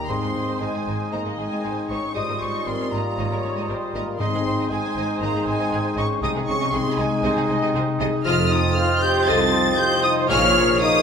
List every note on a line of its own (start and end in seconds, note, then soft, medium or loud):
0.00 0.11 D#3 medium
0.00 0.11 A#3 medium
0.00 0.86 D#4 medium
0.00 0.10 G4 medium
0.00 0.11 A#4 medium
0.00 3.63 D#5 medium
0.00 0.11 A#5 medium
0.08 0.14 G#1 medium
0.08 2.14 G#2 soft
0.08 0.14 G#2 soft
0.08 0.57 G#3 soft
0.08 0.60 C4 soft
0.08 0.14 D#4 soft
0.08 0.58 D#4 soft
0.08 1.09 C5 medium
0.08 0.14 C5 soft
0.08 0.57 D#5 soft
0.08 0.60 C6 soft
0.08 0.61 C6 medium
0.22 0.27 G#2 soft
0.22 0.27 G#3 soft
0.22 0.27 D#4 soft
0.35 0.40 G#1 soft
0.35 0.40 G#2 soft
0.35 1.37 C4 soft
0.35 0.41 C4 soft
0.35 0.41 G#4 soft
0.48 0.53 G#2 medium
0.48 0.53 D#4 soft
0.48 0.53 C5 soft
0.60 0.66 G#1 soft
0.60 0.67 G#2 soft
0.60 0.66 G#3 soft
0.60 2.18 G#3 soft
0.60 1.12 G#3 medium
0.60 0.66 D#4 soft
0.60 2.13 D#4 soft
0.60 1.63 G#4 soft
0.60 2.12 D#5 soft
0.60 1.14 G#5 soft
0.60 1.13 G#5 medium
0.74 0.80 G#2 soft
0.74 0.79 C4 soft
0.74 0.79 G#4 soft
0.87 0.92 G#1 medium
0.87 0.92 G#2 medium
0.87 0.92 D#4 soft
0.87 1.89 D#4 soft
0.87 0.92 C5 soft
1.12 1.18 G#1 soft
1.12 1.18 G#2 soft
1.12 2.18 D#3 soft
1.12 1.38 A#3 soft
1.12 1.18 D#4 soft
1.12 1.18 C5 soft
1.12 1.64 D#5 medium
1.12 1.40 A#5 soft
1.12 1.21 A#5 medium
1.25 1.30 G#2 soft
1.25 1.31 G#3 soft
1.25 1.31 D#4 soft
1.38 1.43 G#1 soft
1.38 1.44 G#2 soft
1.38 1.89 G#3 soft
1.38 2.17 C4 soft
1.38 1.44 C4 soft
1.38 1.44 G#4 soft
1.38 1.92 G#5 soft
1.38 1.89 G#5 medium
1.51 1.56 G#2 medium
1.51 1.57 D#4 soft
1.51 1.57 C5 soft
1.63 1.69 G#1 soft
1.63 1.69 G#2 soft
1.63 1.69 G#3 soft
1.63 1.69 D#4 soft
1.63 2.17 G#4 soft
1.63 1.90 C5 soft
1.90 1.95 G#1 medium
1.90 1.95 G#2 medium
1.90 2.16 C#4 medium
1.90 2.91 D#4 soft
1.90 1.95 D#4 medium
1.90 1.96 C5 medium
1.90 2.15 C#5 soft
1.90 2.15 C#6 medium
1.90 2.16 C#6 medium
2.14 2.21 G#1 medium
2.14 3.17 G#2 soft
2.14 2.21 G#2 medium
2.14 4.19 G3 soft
2.14 2.21 D#4 medium
2.14 2.28 D#4 soft
2.14 4.16 F4 soft
2.14 2.66 C5 medium
2.14 4.15 D#5 soft
2.14 2.21 D#5 soft
2.14 2.41 D#6 soft
2.14 2.41 D#6 medium
2.28 2.33 G#2 soft
2.28 2.34 A#3 soft
2.28 2.34 A#4 soft
2.41 2.46 G#1 soft
2.41 2.46 G#2 soft
2.41 2.66 C#4 medium
2.41 3.42 C#4 soft
2.41 2.47 C#4 soft
2.41 2.47 C#5 soft
2.41 2.67 C#6 medium
2.41 2.65 C#6 medium
2.53 2.59 G#2 medium
2.53 2.59 D#4 soft
2.53 2.59 D#5 soft
2.66 2.72 G#1 soft
2.66 2.72 G#2 soft
2.66 2.72 A#3 soft
2.66 2.92 C4 medium
2.66 3.67 G4 soft
2.66 3.18 A#4 soft
2.66 2.72 A#4 soft
2.66 2.72 C6 medium
2.66 2.93 C6 medium
2.80 2.85 G#2 soft
2.80 2.85 C#4 soft
2.80 2.85 C#5 soft
2.92 2.97 G#1 medium
2.92 2.98 G#2 medium
2.92 3.67 A#3 soft
2.92 3.93 D#4 soft
2.92 2.99 D#4 soft
2.92 2.99 D#5 medium
2.92 3.68 A#5 soft
2.92 3.70 A#5 medium
3.18 3.23 G#1 medium
3.18 4.19 G#2 soft
3.18 3.23 G#2 medium
3.18 3.24 D#4 medium
3.18 3.68 C#5 medium
3.18 3.24 D#5 medium
3.31 3.36 G#2 soft
3.31 3.37 A#3 soft
3.31 3.37 A#4 soft
3.43 3.48 G#1 soft
3.43 3.48 G#2 soft
3.43 4.22 C#4 soft
3.43 3.49 C#4 soft
3.43 3.49 C#5 soft
3.56 3.61 G#2 medium
3.56 3.62 D#4 medium
3.56 3.62 D#5 medium
3.69 3.74 G#1 soft
3.69 3.74 G#2 soft
3.69 3.74 A#3 soft
3.69 4.21 G4 soft
3.69 3.75 A#4 soft
3.69 3.94 C5 medium
3.93 3.99 G#1 medium
3.93 3.99 G#2 medium
3.93 4.17 A#3 medium
3.93 4.95 D#4 soft
3.93 4.00 D#4 medium
3.93 4.20 A#4 medium
3.93 4.00 D#5 medium
3.93 4.21 A#5 medium
3.93 4.04 A#5 medium
4.19 4.24 G#1 medium
4.19 6.25 G#2 medium
4.19 4.25 G#2 medium
4.19 4.92 G#2 medium
4.19 4.70 G#3 soft
4.19 4.70 C4 medium
4.19 4.70 D#4 soft
4.19 4.26 D#4 medium
4.19 4.45 D#5 medium
4.19 4.69 D#5 soft
4.19 4.26 D#5 medium
4.19 4.69 C6 medium
4.19 4.70 C6 medium
4.32 4.38 G#2 soft
4.32 4.39 G#3 soft
4.32 4.39 G#4 soft
4.44 4.50 G#1 soft
4.44 4.50 G#2 soft
4.44 5.46 C4 soft
4.44 4.51 C4 soft
4.44 6.22 C5 medium
4.44 4.52 C5 soft
4.58 4.63 G#2 medium
4.58 4.65 D#4 medium
4.58 4.64 D#5 medium
4.70 4.75 G#1 soft
4.70 4.76 G#2 soft
4.70 5.21 G#3 medium
4.70 6.20 G#3 soft
4.70 4.77 G#3 soft
4.70 6.06 D#4 medium
4.70 5.71 G#4 soft
4.70 4.77 G#4 soft
4.70 6.06 D#5 soft
4.70 5.24 G#5 medium
4.70 5.21 G#5 medium
4.84 4.89 G#2 soft
4.84 4.90 C4 soft
4.84 4.90 C5 soft
4.95 5.01 G#1 medium
4.95 5.01 G#2 medium
4.95 5.96 D#4 soft
4.95 5.02 D#4 medium
4.95 5.02 D#5 medium
5.20 5.26 G#1 medium
5.20 5.26 G#2 medium
5.20 6.25 D#3 soft
5.20 5.32 A#3 medium
5.20 5.28 D#4 medium
5.20 5.28 D#5 medium
5.20 5.48 A#5 medium
5.20 5.47 A#5 medium
5.33 5.38 G#2 soft
5.33 5.41 G#3 soft
5.33 5.41 G#4 soft
5.46 5.51 G#1 soft
5.46 5.51 G#2 soft
5.46 5.97 G#3 medium
5.46 6.47 C4 soft
5.46 5.53 C4 soft
5.46 5.52 C5 soft
5.46 5.99 G#5 medium
5.46 5.97 G#5 medium
5.58 5.64 G#2 medium
5.58 5.65 D#4 medium
5.58 5.65 D#5 medium
5.71 5.77 G#1 soft
5.71 5.77 G#2 soft
5.71 5.77 G#3 medium
5.71 6.72 G#4 soft
5.71 5.78 G#4 soft
5.96 6.02 G#1 medium
5.96 6.02 G#2 medium
5.96 6.22 C#4 medium
5.96 6.97 D#4 soft
5.96 6.03 D#4 medium
5.96 6.02 D#5 medium
5.96 6.21 C#6 medium
5.96 6.06 C#6 medium
6.22 6.27 C2 medium
6.22 7.22 C3 medium
6.22 6.28 C3 medium
6.22 6.55 G#3 medium
6.22 6.47 D#4 medium
6.22 6.55 D#4 medium
6.22 6.28 D#4 medium
6.22 6.72 G#4 medium
6.22 6.55 D#5 soft
6.22 6.29 D#5 medium
6.22 6.28 D#6 medium
6.22 6.32 D#6 medium
6.35 6.40 C3 medium
6.35 6.41 G#3 soft
6.35 6.41 G#4 soft
6.48 6.53 C2 soft
6.48 6.53 C3 soft
6.48 7.48 C4 soft
6.48 6.54 C4 soft
6.48 6.72 C#4 medium
6.48 6.54 C5 soft
6.48 6.75 C#6 medium
6.48 6.73 C#6 medium
6.61 6.66 C3 medium
6.61 6.66 D#4 medium
6.61 6.66 D#5 medium
6.73 6.78 C2 medium
6.73 6.78 C3 soft
6.73 8.22 G#3 medium
6.73 6.79 G#3 medium
6.73 6.99 C4 medium
6.73 8.22 D#4 medium
6.73 7.74 G#4 soft
6.73 6.79 G#4 soft
6.73 7.23 G#4 medium
6.73 8.22 D#5 medium
6.73 7.00 C6 medium
6.73 6.99 C6 medium
6.86 6.91 C3 medium
6.86 6.92 C4 soft
6.86 6.92 C5 soft
6.98 7.03 C2 medium
6.98 7.03 C3 medium
6.98 7.73 G#3 medium
6.98 8.00 D#4 soft
6.98 7.03 D#4 medium
6.98 7.04 D#5 medium
6.98 7.74 G#5 medium
6.98 7.75 G#5 medium
7.23 7.29 C2 medium
7.23 8.27 C3 medium
7.23 7.29 C3 medium
7.23 7.29 D#4 medium
7.23 7.49 C5 medium
7.23 7.29 D#5 medium
7.36 7.41 C3 soft
7.36 7.42 G#3 medium
7.36 7.42 G#4 medium
7.49 7.54 C2 soft
7.49 7.54 C3 medium
7.49 7.54 C4 medium
7.49 8.51 C4 medium
7.49 7.55 C5 medium
7.49 7.75 D#5 medium
7.62 7.67 C3 medium
7.62 7.67 D#4 medium
7.62 7.67 D#5 medium
7.74 7.79 C2 soft
7.74 7.80 C3 soft
7.74 7.80 G#3 medium
7.74 8.28 G#4 medium
7.74 7.81 G#4 medium
7.74 7.84 C5 medium
8.00 8.05 C2 medium
8.00 8.05 C3 medium
8.00 9.01 D#4 medium
8.00 8.06 D#4 medium
8.00 8.25 G#4 medium
8.00 8.06 D#5 medium
8.25 8.68 F1 medium
8.25 8.68 F2 medium
8.25 10.32 F2 medium
8.25 9.25 F3 medium
8.25 9.24 F4 medium
8.25 8.37 F4 medium
8.25 8.49 F4 medium
8.25 8.77 A4 medium
8.25 9.25 D#5 medium
8.25 8.49 D#5 medium
8.25 8.49 F6 loud
8.25 8.50 F6 medium
8.51 9.51 C4 medium
8.51 8.62 D#4 medium
8.51 8.76 D#6 loud
8.51 8.58 D#6 medium
8.76 8.87 F4 medium
8.76 9.77 F4 medium
8.76 9.77 C5 medium
8.76 9.02 F6 medium
8.76 9.04 F6 medium
9.02 10.02 D#4 medium
9.02 9.26 G4 medium
9.02 9.27 G6 medium
9.02 9.29 G6 medium
9.26 9.69 C2 medium
9.26 10.32 C3 medium
9.26 10.27 F3 medium
9.26 9.50 F4 medium
9.26 10.27 F4 medium
9.26 9.79 A4 medium
9.26 9.50 D#5 medium
9.26 10.31 D#5 medium
9.26 9.78 A6 loud
9.26 9.77 A6 medium
9.52 10.32 C4 medium
9.77 11.02 F4 medium
9.77 10.03 G4 medium
9.77 10.29 C5 medium
9.77 9.84 G6 medium
9.77 10.04 G6 loud
10.03 10.31 D#4 medium
10.03 10.30 D#4 medium
10.03 10.09 D#6 medium
10.03 10.12 D#6 loud
10.28 10.72 A#1 medium
10.28 11.02 A#2 medium
10.28 10.73 A#2 medium
10.28 11.02 F3 medium
10.28 10.81 F4 medium
10.28 11.02 G#4 medium
10.28 10.54 G#4 medium
10.28 10.81 C#5 medium
10.28 11.02 C#5 medium
10.28 10.54 C#5 medium
10.28 10.80 F6 medium
10.28 10.80 F6 loud
10.55 11.02 A#3 medium
10.81 11.02 D#4 loud
10.81 11.02 G#4 medium
10.81 11.02 A#4 medium
10.81 11.02 D#6 medium
10.81 11.02 D#6 loud